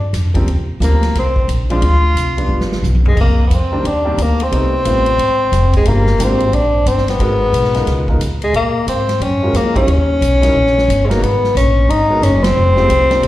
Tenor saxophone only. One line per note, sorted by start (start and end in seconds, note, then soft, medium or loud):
0.00 0.11 D4 medium
0.84 1.14 A#3 medium
1.18 1.48 C4 medium
1.72 2.68 F4 medium
3.08 3.18 G#3 medium
3.21 3.46 A#3 medium
3.47 3.55 B3 medium
3.54 3.89 C4 medium
3.88 4.24 D4 medium
4.22 4.44 A#3 medium
4.43 5.75 C4 loud
5.76 5.90 G#3 medium
5.89 6.24 A#3 medium
6.23 6.56 C4 medium
6.54 6.89 D4 loud
6.88 7.11 C4 medium
7.09 8.14 B3 loud
8.44 8.55 G#3 medium
8.56 8.86 A#3 medium
8.89 9.24 C4 medium
9.23 9.58 C#4 loud
9.56 9.76 A#3 medium
9.77 11.07 C#4 loud
11.05 11.11 G#3 medium
11.05 11.24 A#3 medium
11.23 11.56 B3 medium
11.57 11.91 C#4 loud
11.90 12.25 D#4 loud
12.23 12.45 C#4 medium
12.44 13.28 C4 loud